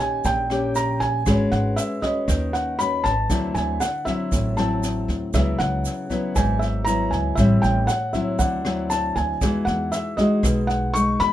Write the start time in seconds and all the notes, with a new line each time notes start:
Already playing: D#3 A#3 C#4 G4
0.00 A#1 G#5
0.25 A#1 A#2 G5, kick, snare, shaker
0.50 A#3 C#4 G4, cross-stick, snare, shaker
0.75 A#5, snare, shaker
1.00 G#5, kick, snare, shaker
1.26 G#1 G#3 C#4 F#4 B4, kick, cross-stick, snare, shaker
1.52 G#1 F#5, snare, shaker
1.76 E5, snare, shaker
2.02 C#4 F#4 B4 D#5, kick, snare, shaker
2.28 D#2 D#3, kick, cross-stick, snare, shaker
2.53 F#5, snare, shaker
2.79 C#4 F#4 B4 B5, snare, shaker
3.04 G#1 A5, kick, snare, shaker
3.30 D2 D3 F#3 C4 E4, kick, cross-stick, snare, shaker
3.54 D2 G#5, snare, shaker
3.80 F#5, cross-stick, snare, shaker
4.05 F#3 C4 E4 E5, kick, snare, shaker
4.32 A1 A2, kick, snare, shaker
4.57 F#3 C4 E4 A5, cross-stick, snare, shaker
4.83 snare, shaker
5.08 D2, kick, snare, shaker
5.34 C#2 C#3 F#3 B3 E4 E5, kick, cross-stick, snare, shaker
5.59 C#2 F#5, snare, shaker
5.85 snare, shaker
6.10 F#3 B3 E4, kick, snare, shaker
6.35 G#1 G#2 G#5, kick, cross-stick, snare, shaker
6.59 E5, snare, shaker
6.85 F#3 B3 E4 A#5, snare, shaker
7.11 C#2 G#5, kick, snare, shaker
7.35 A1 A2 G3 C4 E4 E5, kick, cross-stick, snare, shaker
7.62 A1 G5, snare, shaker
7.87 F#5, cross-stick, snare, shaker
8.13 F#3 C4 E4 E5, kick, snare, shaker
8.39 D2 D3 F#5, kick, snare, shaker
8.65 F#3 C4 E4, cross-stick, snare, shaker
8.90 A5, snare, shaker
9.16 D2 G#5, kick, snare, shaker
9.41 E2 E3 G#3 D#4 F#4, kick, cross-stick, snare, shaker
9.65 E2 F#5, snare, shaker
9.92 E5, snare, shaker
10.17 G#3 D#4 F#4 D#5, kick, snare, shaker
10.43 B1 B2, kick, cross-stick, snare, shaker
10.67 F#5, snare, shaker
10.94 G#3 D#4 F#4 C#6, snare, shaker
11.20 E2 B5, kick, snare, shaker